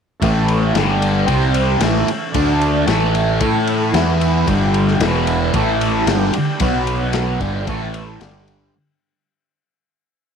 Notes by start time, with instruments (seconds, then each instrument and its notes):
0.20 fingered electric bass A1, distorted electric guitar A2 E3, transistor combo organ E3 C#4 A4 E5, kick, ride
0.24 distorted electric guitar A3
0.48 ride
0.72 fingered electric bass G1, distorted electric guitar G2, transistor combo organ D3 D4 G4 G5, ride
0.76 distorted electric guitar D3 G3, snare
1.02 ride
1.24 fingered electric bass C2, transistor combo organ C3 C4 G5, distorted electric guitar C3 G3, kick, ride
1.29 distorted electric guitar C4
1.54 ride
1.79 fingered electric bass A1, distorted electric guitar A2 E3 A3, transistor combo organ E3 C#4 A4 E5, snare, ride
2.07 muted distorted electric guitar stroke, muted fingered electric bass stroke, ride
2.31 fingered electric bass D2, transistor combo organ D3 A3 D5, distorted electric guitar D3, kick, ride
2.35 distorted electric guitar A3 D4
2.61 ride
2.86 fingered electric bass A1, distorted electric guitar A2 E3 A3, transistor combo organ E3 C#4 E5, snare, ride
3.15 ride
3.41 fingered electric bass A2, distorted electric guitar A3 E4 A4, kick, ride
3.67 ride
3.93 fingered electric bass E2, distorted electric guitar E3 B3 E4, transistor combo organ B3 B4, snare, ride
4.21 ride
4.45 fingered electric bass G1, distorted electric guitar G2 D3 G3, transistor combo organ D3 G3 G4 D5, kick, ride
4.74 ride
4.88 snare
5.00 fingered electric bass E1, distorted electric guitar E2 B2 E3, transistor combo organ E3 B3 B4 E5, snare, ride
5.27 ride
5.54 fingered electric bass A1, distorted electric guitar A2 E3 A3, transistor combo organ A3 A4 E5, kick, ride
5.81 ride
6.07 fingered electric bass G1, distorted electric guitar G2 D3 G3, transistor combo organ D3 D4 G4 G5, snare, ride
6.33 muted distorted electric guitar stroke, muted fingered electric bass stroke, ride
6.60 fingered electric bass B1, distorted electric guitar B2 F#3 B3, transistor combo organ F#3 B3 B4 F#5, kick, ride
6.87 ride
7.13 snare, ride
7.39 fingered electric bass G1, distorted electric guitar G2 D3 G3, transistor combo organ D3 D4 G4 G5, kick, ride
7.66 fingered electric bass A1, distorted electric guitar A2 E3 A3, transistor combo organ E3 A3 A4 E5, kick, ride
7.94 ride
8.17 fingered electric bass G1, distorted electric guitar G2, transistor combo organ D3 G3 G4 D5, ride
8.22 distorted electric guitar D3 G3, snare
8.48 ride